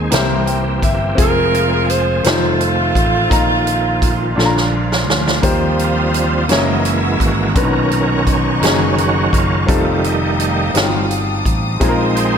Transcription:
Already playing: grand piano D#3 D#4 G#4 C5, tonewheel organ G#3 C4 G#4
0.11 fingered electric bass C2, grand piano C3 A#3 C4 E4 G4 C5, tonewheel organ E3 A#3 G4, snare, closed hi-hat
0.46 grand piano G5, closed hi-hat
0.82 fingered electric bass G1, grand piano E5, kick, closed hi-hat
1.15 fingered electric bass F1, grand piano C4 F4 G#4, kick, closed hi-hat
1.20 tonewheel organ F3 G#3 G#4, saxophone section F4 A#4
1.54 closed hi-hat
1.89 saxophone section C5, closed hi-hat
2.24 fingered electric bass F1, tonewheel organ D#3 A3 F4, grand piano A3 C4 D#4 F4 C5, saxophone section C4, snare, closed hi-hat
2.28 saxophone section A3 F4
2.61 closed hi-hat
2.95 fingered electric bass A1, kick, closed hi-hat
3.30 fingered electric bass A#1, grand piano A#2 D#4 F4 A#5, tonewheel organ F3, kick, closed hi-hat
3.67 closed hi-hat
4.02 kick, closed hi-hat
4.36 fingered electric bass A#1, grand piano A#2 D4 F4 A4, tonewheel organ D3 F3, snare
4.45 grand piano A#5
4.57 snare
4.92 snare
5.08 fingered electric bass D2, snare
5.27 snare
5.41 fingered electric bass D#2, grand piano D#3 A#3 D#4 F4 G4 C5, tonewheel organ F3 G3 C4, string section F5 G5 C6 D#6, kick, closed hi-hat
5.79 tonewheel organ F4, closed hi-hat
6.14 closed hi-hat
6.48 fingered electric bass F#1, tonewheel organ E3 G#3 A#3 D#4, grand piano A#3 C#4 E4 F#4 C#5, string section F#5 A#5 C#6 E6, snare, closed hi-hat
6.85 tonewheel organ E4, closed hi-hat
7.20 fingered electric bass G#1, tonewheel organ F#4, kick, closed hi-hat
7.54 fingered electric bass B1, grand piano A#2 B2 C#4 D4 F#4 B4, tonewheel organ D#3 F#3 C#4 A#4, string section D#5 C#6, kick, closed hi-hat
7.63 grand piano D#4
7.91 closed hi-hat
8.27 kick, closed hi-hat
8.60 fingered electric bass F#1, grand piano A#3 C#4 D#4 F#4 G#4, closed hi-hat
8.65 snare
8.98 tonewheel organ F#4, closed hi-hat
9.33 fingered electric bass F#1, tonewheel organ F4, kick, closed hi-hat
9.66 fingered electric bass F1, tonewheel organ D#3 G3, grand piano G3 C4 D#4 F4 A4, string section F5 G5 A5 D#6, kick, closed hi-hat
9.70 tonewheel organ A3
10.04 tonewheel organ D#4, closed hi-hat
10.40 tonewheel organ D#4, closed hi-hat
10.74 fingered electric bass G1, grand piano G3 C4 D#4 F4 F#4, tonewheel organ F4, snare, closed hi-hat
10.83 grand piano G4
11.11 closed hi-hat
11.45 fingered electric bass A1, kick, closed hi-hat
11.80 fingered electric bass A#1, grand piano A#2 G#3 C4 D#4 F4 G#4, tonewheel organ G#3 C4 D#4, string section F5 A#5 C6, kick, closed hi-hat
11.89 grand piano A#4
12.16 tonewheel organ C5, closed hi-hat

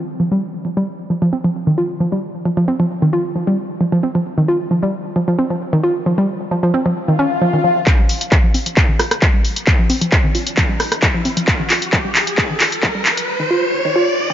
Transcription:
0.20 synth arpeggio sound F3
0.32 synth arpeggio sound G3
0.65 synth arpeggio sound F3
0.77 synth arpeggio sound G3
1.10 synth arpeggio sound F3
1.22 synth arpeggio sound F3
1.33 synth arpeggio sound C4
1.44 synth arpeggio sound F3
1.67 synth arpeggio sound D#3
1.78 synth arpeggio sound F4
2.00 synth arpeggio sound F3
2.12 synth arpeggio sound G3
2.45 synth arpeggio sound F3
2.57 synth arpeggio sound F3
2.68 synth arpeggio sound C4
2.80 synth arpeggio sound F3
3.02 synth arpeggio sound D#3
3.13 synth arpeggio sound F4
3.36 synth arpeggio sound F3
3.47 synth arpeggio sound G3
3.81 synth arpeggio sound F3
3.92 synth arpeggio sound F3
4.03 synth arpeggio sound C4
4.15 synth arpeggio sound F3
4.38 synth arpeggio sound D#3
4.48 synth arpeggio sound F4
4.71 synth arpeggio sound F3
4.83 synth arpeggio sound G3
5.16 synth arpeggio sound F3
5.28 synth arpeggio sound F3
5.39 synth arpeggio sound C4
5.50 synth arpeggio sound F3
5.73 synth arpeggio sound D#3
5.84 synth arpeggio sound F4
6.06 synth arpeggio sound F3
6.18 synth arpeggio sound G3
6.51 synth arpeggio sound F3
6.63 synth arpeggio sound F3
6.74 synth arpeggio sound C4
6.86 synth arpeggio sound F3
6.97 swell
7.08 synth arpeggio sound D#3
7.19 synth arpeggio sound C#4
7.42 synth arpeggio sound F3
7.54 synth arpeggio sound D#3
7.64 synth arpeggio sound F3
7.87 synth arpeggio sound F3, kick, clap, closed hi-hat, riser
7.99 synth arpeggio sound G3
8.09 open hi-hat
8.21 closed hi-hat
8.32 synth arpeggio sound F3, kick, clap, closed hi-hat
8.44 synth arpeggio sound F3
8.54 synth arpeggio sound C4, open hi-hat
8.66 synth arpeggio sound F3, closed hi-hat
8.77 kick, clap, closed hi-hat
8.89 synth arpeggio sound D#3
8.99 synth arpeggio sound F4, cross-stick, open hi-hat
9.11 cross-stick, closed hi-hat
9.22 synth arpeggio sound F3, kick, clap, closed hi-hat
9.34 synth arpeggio sound G3
9.45 open hi-hat
9.56 closed hi-hat
9.67 synth arpeggio sound F3, kick, clap, closed hi-hat
9.79 synth arpeggio sound F3
9.90 synth arpeggio sound C4, open hi-hat
10.01 synth arpeggio sound F3, closed hi-hat
10.12 kick, clap, closed hi-hat
10.24 synth arpeggio sound D#3
10.35 synth arpeggio sound F4, open hi-hat
10.47 closed hi-hat
10.57 synth arpeggio sound F3, kick, clap, closed hi-hat
10.69 synth arpeggio sound G3
10.80 cross-stick, open hi-hat
10.92 cross-stick, closed hi-hat
11.02 synth arpeggio sound F3, kick, clap, closed hi-hat
11.14 synth arpeggio sound F3
11.25 synth arpeggio sound C4, open hi-hat
11.37 synth arpeggio sound F3, closed hi-hat
11.48 kick, clap, closed hi-hat
11.60 synth arpeggio sound D#3
11.70 synth arpeggio sound F4, clap, open hi-hat
11.82 closed hi-hat
11.93 synth arpeggio sound F3, kick, clap, closed hi-hat
12.05 synth arpeggio sound G3
12.15 clap, open hi-hat
12.27 closed hi-hat
12.38 kick, clap, closed hi-hat
12.50 synth arpeggio sound D#3
12.60 synth arpeggio sound F4, clap, open hi-hat
12.72 closed hi-hat
12.83 synth arpeggio sound F3, kick, clap, closed hi-hat
12.95 synth arpeggio sound G3
13.06 clap, open hi-hat
13.17 closed hi-hat
13.40 synth arpeggio sound D#3
13.51 synth arpeggio sound F4
13.85 synth arpeggio sound D#3
13.96 synth arpeggio sound F4
14.30 synth arpeggio sound D#3

